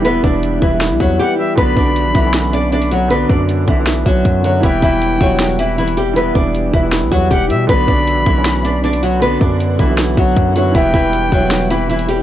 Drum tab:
HH |x---x---x-------|x---x---x-x-xxx-|x---x---x---x-x-|x---x---x-x-xxx-|
SD |--------o-------|--------o-------|--------o-------|--------o-------|
BD |--o---o---o-----|o-o---o---------|--o---o---o-o---|o-o---o---------|

HH |x---x---x---x-x-|x---x---x-x-xxx-|x---x---x---x-x-|x---x---x-x-xxx-|
SD |--------o-------|--------o-------|--------o-------|--------o-------|
BD |--o---o---o-o---|o-o---o---------|--o---o---o-o---|o-o---o---------|